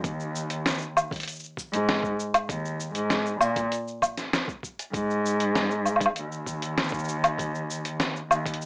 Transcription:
0.04 1.05 D#2 medium
0.04 kick loud
0.04 closed hi-hat soft
0.04 shaker soft
0.20 shaker soft
0.35 shaker medium
0.50 closed hi-hat medium
0.50 shaker soft
0.66 snare loud
0.66 closed hi-hat soft
0.66 shaker soft
0.70 shaker soft
0.74 shaker soft
0.78 shaker soft
0.81 shaker soft
0.97 low woodblock medium
0.97 shaker medium
1.11 kick loud
1.11 closed hi-hat soft
1.11 shaker soft
1.16 closed hi-hat soft
1.16 shaker soft
1.20 closed hi-hat soft
1.20 shaker soft
1.23 closed hi-hat soft
1.23 shaker soft
1.28 closed hi-hat soft
1.28 shaker soft
1.31 shaker soft
1.35 shaker soft
1.39 shaker soft
1.44 shaker soft
1.57 kick medium
1.57 shaker medium
1.72 2.12 G#2 loud
1.72 closed hi-hat medium
1.72 shaker soft
1.89 snare loud
1.89 closed hi-hat soft
2.03 kick loud
2.03 shaker soft
2.20 shaker medium
2.34 closed hi-hat medium
2.34 low woodblock medium
2.34 shaker soft
2.49 2.89 D#2 loud
2.49 kick loud
2.49 closed hi-hat soft
2.49 shaker soft
2.65 shaker soft
2.80 shaker medium
2.95 3.35 G#2 loud
2.95 closed hi-hat soft
2.95 shaker soft
3.10 snare medium
3.10 closed hi-hat soft
3.10 shaker soft
3.26 shaker soft
3.41 3.64 A#2 medium
3.41 low woodblock medium
3.41 shaker medium
3.56 kick loud
3.56 closed hi-hat medium
3.56 shaker soft
3.72 closed hi-hat soft
3.72 shaker soft
3.87 shaker soft
4.02 kick medium
4.02 low woodblock medium
4.02 shaker medium
4.17 snare soft
4.17 closed hi-hat soft
4.17 shaker soft
4.33 snare loud
4.33 closed hi-hat soft
4.33 shaker soft
4.48 kick loud
4.48 shaker soft
4.63 kick medium
4.63 shaker medium
4.79 closed hi-hat medium
4.79 shaker soft
4.93 6.10 G#2 medium
4.93 kick loud
4.93 closed hi-hat soft
4.93 shaker soft
5.10 shaker soft
5.26 shaker medium
5.40 closed hi-hat medium
5.40 shaker soft
5.55 snare medium
5.55 closed hi-hat soft
5.55 shaker soft
5.71 shaker soft
5.85 low woodblock soft
5.85 shaker medium
5.96 low woodblock soft
6.01 kick loud
6.01 closed hi-hat medium
6.01 shaker soft
6.06 low woodblock medium
6.16 8.24 D#2 loud
6.16 closed hi-hat soft
6.16 shaker soft
6.32 shaker soft
6.46 kick medium
6.46 shaker medium
6.62 closed hi-hat soft
6.62 shaker soft
6.78 snare medium
6.78 closed hi-hat soft
6.78 shaker soft
6.83 shaker soft
6.88 shaker soft
6.92 kick loud
6.92 shaker soft
6.99 shaker soft
7.04 shaker soft
7.08 shaker medium
7.24 closed hi-hat medium
7.24 low woodblock medium
7.24 shaker soft
7.38 kick loud
7.38 closed hi-hat soft
7.38 shaker soft
7.55 shaker soft
7.70 shaker medium
7.85 closed hi-hat medium
7.85 shaker soft
8.00 snare medium
8.00 closed hi-hat soft
8.00 shaker soft
8.16 shaker soft
8.30 8.53 D#2 medium
8.30 low woodblock medium
8.30 shaker medium
8.46 kick medium
8.46 closed hi-hat medium
8.46 shaker soft
8.54 closed hi-hat soft
8.61 shaker soft

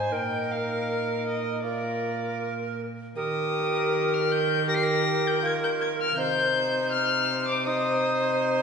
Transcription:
0.00 0.13 G#2 medium
0.00 0.11 D#4 medium
0.00 0.14 C5 medium
0.00 0.15 G#5 medium
0.12 2.92 A#2 medium
0.12 1.65 D#4 medium
0.12 1.64 A#4 medium
0.12 0.52 G5 medium
0.51 1.27 F5 medium
1.27 1.63 D#5 medium
1.63 2.84 F4 medium
1.63 2.82 A#4 medium
1.63 2.38 D5 medium
3.16 6.13 D#3 medium
3.16 4.63 G4 medium
3.16 4.63 A#4 medium
3.16 4.15 D#6 loud
4.14 4.32 F6 medium
4.31 4.68 G6 loud
4.67 5.41 G4 medium
4.67 6.13 A#4 medium
4.67 4.77 A#6 loud
4.76 4.85 C7 medium
4.83 5.28 A#6 loud
5.27 5.44 G6 loud
5.43 6.19 F4 medium
5.43 5.52 G#6 medium
5.64 5.71 G6 medium
5.81 5.88 G#6 loud
6.00 6.18 F6 medium
6.17 8.62 C3 medium
6.17 7.67 D#4 medium
6.17 7.64 C5 medium
6.17 6.91 G6 loud
6.91 7.46 F6 loud
7.48 7.66 D6 loud
7.67 8.62 D#4 medium
7.67 8.62 C5 medium
7.67 8.62 D#6 loud

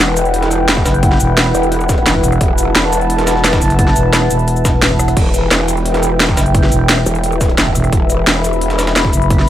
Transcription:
0.00 0.84 E1 loud
0.00 9.49 E4 medium
0.00 9.49 B4 medium
0.00 5.13 F#5 medium
0.00 2.40 G5 medium
0.08 cross-stick soft
0.17 closed hi-hat medium
0.17 cabasa medium
0.25 closed hi-hat soft
0.34 closed hi-hat medium
0.42 snare medium
0.42 closed hi-hat soft
0.51 closed hi-hat medium
0.51 cabasa medium
0.68 snare loud
0.68 closed hi-hat medium
0.77 kick loud
0.77 snare soft
0.86 1.19 F#1 loud
0.86 snare loud
0.86 closed hi-hat medium
0.86 cabasa medium
0.94 closed hi-hat soft
1.03 kick loud
1.03 closed hi-hat medium
1.12 snare soft
1.20 1.53 E1 medium
1.20 closed hi-hat medium
1.20 cabasa medium
1.37 snare loud
1.37 closed hi-hat medium
1.46 cross-stick soft
1.55 2.05 E1 medium
1.55 closed hi-hat medium
1.55 cabasa medium
1.63 closed hi-hat soft
1.72 closed hi-hat medium
1.81 closed hi-hat soft
1.89 kick loud
1.89 snare medium
1.89 closed hi-hat medium
1.89 cabasa medium
1.98 closed hi-hat soft
2.06 2.22 E1 loud
2.06 snare loud
2.06 closed hi-hat medium
2.15 kick medium
2.24 2.39 E1 loud
2.24 closed hi-hat medium
2.24 cabasa medium
2.32 cross-stick soft
2.32 closed hi-hat soft
2.41 2.74 E1 loud
2.41 5.16 A5 medium
2.41 kick loud
2.41 closed hi-hat medium
2.41 closed hi-hat loud
2.58 closed hi-hat medium
2.58 cabasa medium
2.75 3.60 E1 medium
2.75 snare loud
2.75 closed hi-hat medium
2.75 closed hi-hat loud
2.84 cross-stick soft
2.93 closed hi-hat medium
2.93 cabasa medium
3.01 closed hi-hat soft
3.10 closed hi-hat medium
3.18 snare medium
3.18 closed hi-hat soft
3.27 snare loud
3.27 closed hi-hat medium
3.27 cabasa medium
3.36 snare soft
3.44 snare loud
3.44 closed hi-hat medium
3.44 closed hi-hat loud
3.53 kick loud
3.53 snare loud
3.53 closed hi-hat medium
3.62 3.95 F#1 loud
3.62 snare soft
3.62 closed hi-hat medium
3.62 cabasa medium
3.70 closed hi-hat soft
3.70 closed hi-hat medium
3.79 kick loud
3.79 closed hi-hat loud
3.79 closed hi-hat medium
3.87 snare soft
3.96 4.29 E1 medium
3.96 closed hi-hat medium
3.96 cabasa medium
4.13 snare loud
4.13 closed hi-hat loud
4.13 closed hi-hat medium
4.22 cross-stick soft
4.30 5.15 E1 medium
4.30 closed hi-hat medium
4.30 cabasa medium
4.39 closed hi-hat soft
4.48 closed hi-hat medium
4.48 cabasa soft
4.56 closed hi-hat soft
4.56 cabasa soft
4.65 kick loud
4.65 snare loud
4.65 closed hi-hat medium
4.65 cabasa medium
4.82 snare loud
4.82 closed hi-hat medium
4.82 closed hi-hat loud
4.91 kick medium
4.91 cross-stick soft
4.99 cross-stick medium
4.99 closed hi-hat medium
4.99 cabasa medium
5.08 cross-stick soft
5.08 closed hi-hat medium
5.08 closed hi-hat soft
5.17 5.50 E1 loud
5.17 9.49 E5 medium
5.17 7.91 G5 loud
5.17 kick loud
5.17 closed hi-hat medium
5.17 closed hi-hat loud
5.17 crash medium
5.34 closed hi-hat medium
5.34 cabasa medium
5.51 6.36 E1 medium
5.51 snare loud
5.51 closed hi-hat loud
5.51 closed hi-hat medium
5.60 cross-stick medium
5.68 closed hi-hat medium
5.68 cabasa medium
5.77 closed hi-hat soft
5.86 closed hi-hat medium
5.86 closed hi-hat loud
5.94 snare medium
5.94 closed hi-hat soft
6.03 closed hi-hat medium
6.03 cabasa medium
6.20 snare loud
6.20 closed hi-hat medium
6.20 closed hi-hat loud
6.29 kick loud
6.29 snare soft
6.37 6.70 F#1 loud
6.37 snare loud
6.37 closed hi-hat medium
6.37 cabasa medium
6.46 closed hi-hat soft
6.54 kick loud
6.54 closed hi-hat medium
6.54 closed hi-hat loud
6.63 snare soft
6.72 7.05 E1 medium
6.72 closed hi-hat medium
6.72 cabasa medium
6.89 snare loud
6.89 closed hi-hat medium
6.98 cross-stick medium
7.06 7.57 E1 loud
7.06 closed hi-hat medium
7.06 cabasa medium
7.15 closed hi-hat soft
7.24 closed hi-hat medium
7.24 closed hi-hat loud
7.32 closed hi-hat soft
7.41 kick loud
7.41 snare medium
7.41 closed hi-hat medium
7.41 cabasa medium
7.49 closed hi-hat soft
7.58 7.74 E1 loud
7.58 snare loud
7.58 closed hi-hat medium
7.67 kick medium
7.75 7.91 E1 loud
7.75 closed hi-hat medium
7.75 cabasa medium
7.84 cross-stick soft
7.84 closed hi-hat soft
7.92 8.26 E1 loud
7.92 9.49 B5 medium
7.92 kick loud
7.92 closed hi-hat medium
8.10 closed hi-hat medium
8.10 cabasa medium
8.27 9.12 E1 loud
8.27 snare loud
8.27 closed hi-hat medium
8.36 cross-stick soft
8.44 closed hi-hat medium
8.44 cabasa medium
8.53 closed hi-hat soft
8.61 closed hi-hat medium
8.70 snare medium
8.70 closed hi-hat soft
8.79 snare loud
8.79 closed hi-hat medium
8.79 cabasa medium
8.87 snare loud
8.87 closed hi-hat medium
8.96 snare loud
8.96 closed hi-hat medium
9.05 kick loud
9.05 snare soft
9.13 9.46 F#1 loud
9.13 closed hi-hat medium
9.13 cabasa medium
9.22 closed hi-hat soft
9.30 kick loud
9.30 closed hi-hat medium
9.39 snare soft

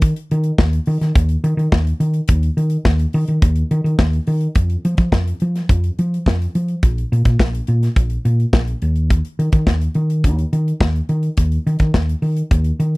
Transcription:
0.00 0.12 D#3 loud
0.00 kick loud
0.00 closed hi-hat medium
0.16 closed hi-hat medium
0.31 0.50 D#3 loud
0.31 closed hi-hat medium
0.44 closed hi-hat soft
0.58 0.78 D#2 medium
0.58 kick loud
0.58 snare loud
0.73 closed hi-hat medium
0.86 0.97 D#3 loud
0.86 open hi-hat medium
1.01 1.11 D#3 medium
1.01 snare soft
1.01 closed hi-hat medium
1.16 1.35 D#2 loud
1.16 kick loud
1.16 closed hi-hat medium
1.29 closed hi-hat soft
1.44 1.53 D#3 loud
1.44 closed hi-hat medium
1.57 1.67 D#3 loud
1.57 closed hi-hat soft
1.72 1.91 D#2 loud
1.72 kick loud
1.72 snare loud
1.87 closed hi-hat soft
2.00 2.19 D#3 loud
2.00 closed hi-hat medium
2.14 closed hi-hat soft
2.28 2.48 D#2 loud
2.28 kick loud
2.28 closed hi-hat medium
2.43 closed hi-hat soft
2.57 2.76 D#3 medium
2.57 closed hi-hat medium
2.70 closed hi-hat medium
2.85 3.04 D#2 loud
2.85 kick loud
2.85 snare loud
2.99 closed hi-hat medium
3.13 3.24 D#3 loud
3.13 open hi-hat medium
3.28 3.38 D#3 medium
3.28 closed hi-hat soft
3.42 3.62 D#2 loud
3.42 kick loud
3.42 closed hi-hat medium
3.56 closed hi-hat medium
3.71 3.80 D#3 loud
3.71 closed hi-hat medium
3.84 3.94 D#3 loud
3.84 closed hi-hat soft
3.99 4.18 D#2 loud
3.99 kick loud
3.99 snare loud
4.13 closed hi-hat soft
4.27 4.47 D#3 medium
4.27 open hi-hat medium
4.41 closed hi-hat soft
4.55 4.75 F2 medium
4.55 kick loud
4.55 closed hi-hat medium
4.70 closed hi-hat soft
4.85 4.94 F3 medium
4.85 closed hi-hat medium
4.97 5.08 F3 medium
4.97 kick loud
4.97 closed hi-hat soft
5.12 5.32 F2 medium
5.12 kick medium
5.12 snare loud
5.27 closed hi-hat medium
5.40 5.61 F3 medium
5.40 closed hi-hat medium
5.56 snare soft
5.56 closed hi-hat soft
5.69 5.89 F2 loud
5.69 kick loud
5.69 closed hi-hat medium
5.84 closed hi-hat soft
5.99 6.18 F3 loud
5.99 closed hi-hat medium
6.14 closed hi-hat soft
6.26 6.46 F2 medium
6.26 kick loud
6.26 snare loud
6.42 closed hi-hat soft
6.55 6.74 F3 medium
6.55 closed hi-hat medium
6.68 closed hi-hat soft
6.83 7.02 A#1 medium
6.83 kick loud
6.83 closed hi-hat medium
6.98 closed hi-hat soft
7.12 7.21 A#2 loud
7.12 closed hi-hat medium
7.25 7.35 A#2 medium
7.25 kick loud
7.25 closed hi-hat soft
7.39 7.59 A#1 medium
7.39 kick loud
7.39 snare loud
7.55 closed hi-hat medium
7.67 7.87 A#2 loud
7.67 closed hi-hat medium
7.83 snare soft
7.83 closed hi-hat medium
7.96 8.16 A#1 medium
7.96 kick loud
7.96 closed hi-hat medium
8.10 closed hi-hat soft
8.25 8.44 A#2 loud
8.25 closed hi-hat medium
8.40 closed hi-hat soft
8.53 8.73 A#1 medium
8.53 kick loud
8.53 snare loud
8.67 closed hi-hat soft
8.82 9.20 D#2 medium
8.82 closed hi-hat medium
8.96 closed hi-hat soft
9.10 kick loud
9.10 closed hi-hat medium
9.25 closed hi-hat soft
9.39 9.48 D#3 medium
9.39 closed hi-hat medium
9.52 9.62 D#3 medium
9.52 kick loud
9.52 closed hi-hat soft
9.67 9.86 D#2 medium
9.67 kick loud
9.67 snare loud
9.82 closed hi-hat medium
9.94 10.26 D#3 loud
9.94 closed hi-hat medium
10.10 closed hi-hat medium
10.24 10.43 D#2 loud
10.24 kick loud
10.24 closed hi-hat medium
10.39 closed hi-hat soft
10.53 10.72 D#3 medium
10.53 closed hi-hat medium
10.68 closed hi-hat soft
10.81 11.00 D#2 loud
10.81 kick loud
10.81 snare loud
10.96 closed hi-hat soft
11.09 11.28 D#3 loud
11.09 closed hi-hat medium
11.23 closed hi-hat soft
11.37 11.57 D#2 loud
11.37 kick loud
11.37 closed hi-hat medium
11.52 closed hi-hat soft
11.67 11.76 D#3 loud
11.67 closed hi-hat medium
11.79 11.90 D#3 medium
11.79 kick medium
11.79 closed hi-hat soft
11.94 12.13 D#2 medium
11.94 kick medium
11.94 snare loud
12.09 closed hi-hat medium
12.22 12.41 D#3 medium
12.22 open hi-hat medium
12.37 closed hi-hat medium
12.51 12.70 D#2 loud
12.51 kick loud
12.51 closed hi-hat medium
12.64 closed hi-hat soft
12.80 12.97 D#3 loud
12.80 closed hi-hat medium

